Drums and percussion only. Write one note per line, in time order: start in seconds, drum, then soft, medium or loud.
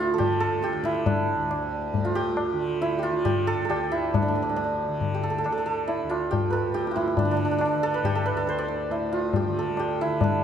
0.20 tabla tin medium
0.20 tabla ge medium
0.63 tabla te medium
0.73 tabla te medium
0.84 tabla ke medium
0.95 tabla te medium
1.06 tabla tin loud
1.06 tabla ge medium
1.51 tabla na medium
1.94 tabla tin medium
1.94 tabla ge medium
2.37 tabla na medium
2.81 tabla tin medium
3.25 tabla tin medium
3.25 tabla ge medium
3.71 tabla na medium
4.14 tabla tin loud
4.14 tabla ge medium
4.57 tabla na medium
5.01 tabla tin medium
5.01 tabla ge medium
5.46 tabla na medium
5.89 tabla tin medium
6.11 tabla na medium
6.33 tabla tin medium
6.33 tabla ge medium
6.75 tabla te medium
6.87 tabla te medium
6.97 tabla ke medium
7.08 tabla te medium
7.17 tabla tin loud
7.17 tabla ge medium
7.61 tabla na medium
8.04 tabla tin medium
8.04 tabla ge medium
8.26 tabla na medium
8.47 tabla te medium
8.68 tabla te medium
8.91 tabla tin medium
9.33 tabla tin medium
9.33 tabla ge medium
9.77 tabla na medium
10.21 tabla tin loud
10.21 tabla ge medium